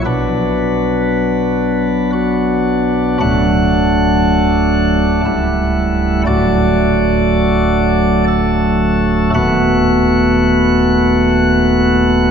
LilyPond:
<<
  \new Staff \with { instrumentName = "Pipe organ" } { \time 3/4 \key d \major \tempo 4 = 59 b'2 fis'4 | fis''2. | d''2 a'4 | \key b \phrygian fis''2. | }
  \new Staff \with { instrumentName = "Pipe organ" } { \clef bass \time 3/4 \key d \major <b,, b, fis b d'>2. | <d,, d, fis a d'>2 <cis,, cis, g a e'>4 | <d,, d, fis a fis'>2. | \key b \phrygian <dis,, dis, a b fis'>2. | }
>>